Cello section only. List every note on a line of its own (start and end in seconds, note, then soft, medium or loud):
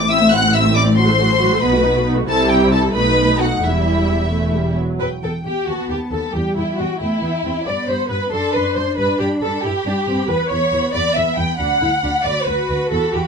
0.00 1.59 A2 medium
1.63 2.27 B2 medium
2.28 2.91 C3 medium
2.95 3.63 B2 medium
3.63 4.77 E2 medium
5.68 6.30 B3 soft
6.34 7.00 G3 soft
7.00 7.22 A3 soft
7.23 7.31 B3 soft
7.45 7.53 C4 soft
7.66 8.31 B3 soft
8.32 8.96 D4 soft
8.98 9.62 D4 medium
9.64 9.72 E4 soft
9.86 9.94 D4 medium
10.07 10.29 C4 medium
10.29 11.57 B3 medium
11.59 11.81 D4 medium
11.81 11.89 E4 medium
12.03 12.11 D4 soft
12.25 13.27 F#4 medium